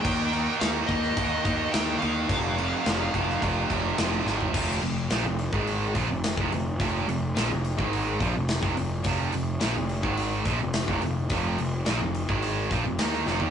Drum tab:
CC |x-x-x-x-x-x-x-x-|x-x-x-x-x-x-x---|x---------------|----------------|
HH |----------------|----------------|--o-o-o-o-o-o-o-|o-o-o-o-o-o-o-o-|
SD |----o--o----o---|----o--o----o-o-|----o-------o---|----o-------o---|
FT |----------------|---------------o|----------------|----------------|
BD |o-----o-o-o-----|o-----o-o-o-----|o------o--o--o--|o------o--o--o--|

CC |----------------|----------------|
HH |o-o-o-o-o-o-o-o-|o-o-o-o-o-o-o---|
SD |----o-------o---|----o-------ooo-|
FT |----------------|---------------o|
BD |o------o--o--o--|o------o--o-----|